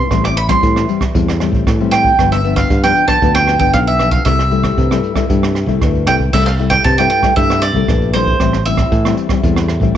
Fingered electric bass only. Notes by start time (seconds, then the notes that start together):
0.11 A1
0.63 A2
1.15 E2
1.52 A1
1.67 A2
2.19 G1
2.70 G2
3.22 D2
3.59 G1
3.74 B1
4.26 C2
4.78 C3
5.30 G2
5.66 C2
5.82 D2
6.07 C2
6.33 C2
6.85 C3
7.37 G2
7.73 C2
7.89 A#1
8.40 A1
8.92 A2
9.44 E2
9.80 A1